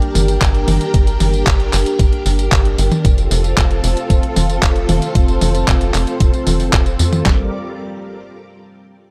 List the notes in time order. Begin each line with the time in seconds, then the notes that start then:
Already playing: D4 G4 A#4
0.02 closed hi-hat
0.15 G1, open hi-hat, high tom, tambourine
0.28 closed hi-hat, tambourine
0.41 G1, kick, clap, closed hi-hat, tambourine
0.55 closed hi-hat
0.68 G1, open hi-hat, high tom, tambourine
0.81 closed hi-hat, tambourine
0.94 G1, kick, closed hi-hat, tambourine
1.07 closed hi-hat, tambourine
1.20 G1, open hi-hat, high tom, tambourine
1.34 closed hi-hat, tambourine
1.47 G1, kick, clap, closed hi-hat, tambourine
1.60 closed hi-hat
1.73 G1, clap, open hi-hat, tambourine
1.86 closed hi-hat, tambourine
1.99 G1, kick, closed hi-hat, tambourine
2.13 closed hi-hat
2.26 G1, open hi-hat, tambourine
2.39 closed hi-hat, tambourine
2.52 G1, kick, clap, closed hi-hat, tambourine
2.65 closed hi-hat
2.78 G1, open hi-hat, tambourine
2.92 closed hi-hat, high tom, tambourine
3.05 F1 C4 F4 A4, kick, closed hi-hat, tambourine
3.18 closed hi-hat, tambourine
3.31 F1, open hi-hat, tambourine
3.44 closed hi-hat, tambourine
3.57 F1, kick, clap, closed hi-hat, tambourine
3.71 closed hi-hat
3.84 F1, open hi-hat, tambourine
3.97 closed hi-hat, tambourine
4.10 F1, kick, closed hi-hat, tambourine
4.23 closed hi-hat
4.36 F1, open hi-hat, high tom, tambourine
4.50 closed hi-hat, tambourine
4.63 F1, kick, clap, closed hi-hat, tambourine
4.76 closed hi-hat
4.89 F1, open hi-hat, high tom, tambourine
5.02 closed hi-hat, tambourine
5.15 F1, kick, closed hi-hat, tambourine
5.28 closed hi-hat, tambourine
5.41 F1, open hi-hat, high tom, tambourine
5.55 closed hi-hat, tambourine
5.68 F1, kick, clap, closed hi-hat, tambourine
5.81 closed hi-hat, tambourine
5.94 F1, clap, open hi-hat, tambourine
6.07 closed hi-hat, tambourine
6.20 F1, kick, closed hi-hat, tambourine
6.34 closed hi-hat, tambourine
6.47 F1, open hi-hat, high tom, tambourine
6.60 open hi-hat, tambourine
6.73 F1, kick, clap, closed hi-hat, tambourine
6.86 closed hi-hat, tambourine
6.99 F2, open hi-hat, tambourine
7.13 closed hi-hat, high tom, tambourine
7.26 G1, kick, snare, clap